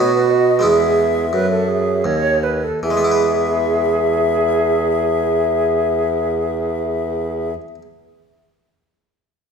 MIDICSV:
0, 0, Header, 1, 5, 480
1, 0, Start_track
1, 0, Key_signature, 4, "major"
1, 0, Tempo, 654308
1, 465, Time_signature, 3, 2, 24, 8
1, 465, Tempo, 708383
1, 1425, Tempo, 785340
1, 5986, End_track
2, 0, Start_track
2, 0, Title_t, "Flute"
2, 0, Program_c, 0, 73
2, 0, Note_on_c, 0, 73, 69
2, 101, Note_off_c, 0, 73, 0
2, 108, Note_on_c, 0, 71, 64
2, 225, Note_on_c, 0, 75, 70
2, 236, Note_off_c, 0, 71, 0
2, 467, Note_off_c, 0, 75, 0
2, 470, Note_on_c, 0, 76, 75
2, 1409, Note_off_c, 0, 76, 0
2, 1905, Note_on_c, 0, 76, 73
2, 4780, Note_off_c, 0, 76, 0
2, 5986, End_track
3, 0, Start_track
3, 0, Title_t, "Flute"
3, 0, Program_c, 1, 73
3, 0, Note_on_c, 1, 66, 63
3, 468, Note_on_c, 1, 68, 53
3, 478, Note_off_c, 1, 66, 0
3, 889, Note_off_c, 1, 68, 0
3, 935, Note_on_c, 1, 71, 61
3, 1047, Note_off_c, 1, 71, 0
3, 1057, Note_on_c, 1, 69, 52
3, 1173, Note_on_c, 1, 68, 59
3, 1183, Note_off_c, 1, 69, 0
3, 1427, Note_on_c, 1, 73, 72
3, 1436, Note_off_c, 1, 68, 0
3, 1659, Note_on_c, 1, 71, 56
3, 1669, Note_off_c, 1, 73, 0
3, 1786, Note_on_c, 1, 69, 52
3, 1795, Note_off_c, 1, 71, 0
3, 1901, Note_off_c, 1, 69, 0
3, 1905, Note_on_c, 1, 68, 54
3, 4780, Note_off_c, 1, 68, 0
3, 5986, End_track
4, 0, Start_track
4, 0, Title_t, "Harpsichord"
4, 0, Program_c, 2, 6
4, 0, Note_on_c, 2, 47, 47
4, 0, Note_on_c, 2, 59, 45
4, 0, Note_on_c, 2, 66, 42
4, 434, Note_on_c, 2, 56, 37
4, 436, Note_off_c, 2, 47, 0
4, 437, Note_off_c, 2, 59, 0
4, 446, Note_off_c, 2, 66, 0
4, 446, Note_on_c, 2, 59, 39
4, 456, Note_on_c, 2, 64, 37
4, 467, Note_on_c, 2, 40, 42
4, 906, Note_off_c, 2, 56, 0
4, 909, Note_off_c, 2, 40, 0
4, 911, Note_off_c, 2, 59, 0
4, 937, Note_on_c, 2, 42, 39
4, 1399, Note_off_c, 2, 42, 0
4, 1421, Note_on_c, 2, 39, 47
4, 1874, Note_off_c, 2, 64, 0
4, 1875, Note_off_c, 2, 39, 0
4, 1902, Note_on_c, 2, 52, 47
4, 1947, Note_on_c, 2, 56, 45
4, 1988, Note_on_c, 2, 59, 46
4, 2032, Note_on_c, 2, 64, 44
4, 2075, Note_on_c, 2, 71, 46
4, 4777, Note_off_c, 2, 52, 0
4, 4822, Note_off_c, 2, 56, 0
4, 4863, Note_off_c, 2, 59, 0
4, 4907, Note_off_c, 2, 64, 0
4, 4951, Note_off_c, 2, 71, 0
4, 5986, End_track
5, 0, Start_track
5, 0, Title_t, "Bassoon"
5, 0, Program_c, 3, 70
5, 0, Note_on_c, 3, 47, 58
5, 454, Note_off_c, 3, 47, 0
5, 467, Note_on_c, 3, 40, 55
5, 936, Note_on_c, 3, 42, 54
5, 946, Note_off_c, 3, 40, 0
5, 1421, Note_off_c, 3, 42, 0
5, 1425, Note_on_c, 3, 39, 60
5, 1799, Note_off_c, 3, 39, 0
5, 1903, Note_on_c, 3, 40, 61
5, 4779, Note_off_c, 3, 40, 0
5, 5986, End_track
0, 0, End_of_file